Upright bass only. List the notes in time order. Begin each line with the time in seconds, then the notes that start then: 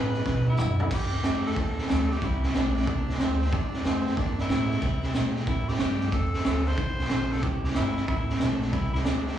Already playing: A2
0.26 B2
0.59 D3
0.91 G2
1.24 F2
1.57 E2
1.89 D2
2.22 C2
2.56 A#1
2.87 C2
3.21 D2
3.53 E2
3.85 F2
4.17 G2
4.49 A2
4.82 C3
5.15 A#2
5.47 A2
5.80 G2
6.12 F2
6.46 D2
6.78 C2
7.11 A#1
7.43 C2
7.77 G1
8.08 A1
8.41 A#1
8.73 C2
9.06 D2